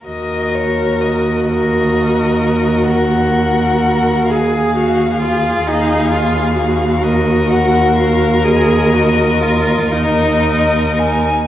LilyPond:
<<
  \new Staff \with { instrumentName = "Violin" } { \time 12/8 \key ees \minor \tempo 4. = 42 ees''8 des''8 ees''8 ees''4. ges''4. f''4.~ | f''4. ees''8 ges''8 f''8 ees''4. ees''4 aes''8 | }
  \new Staff \with { instrumentName = "Violin" } { \time 12/8 \key ees \minor bes'4. bes'4. bes'4. aes'4.~ | aes'4. bes'2. bes'4. | }
  \new Staff \with { instrumentName = "Viola" } { \time 12/8 \key ees \minor ges'1~ ges'8 aes'8 ges'8 f'8 | ees'8 f'8 ges'2 aes'8 ges'8 f'8 ees'4. | }
  \new Staff \with { instrumentName = "Cello" } { \clef bass \time 12/8 \key ees \minor ees,1. | ees,1. | }
>>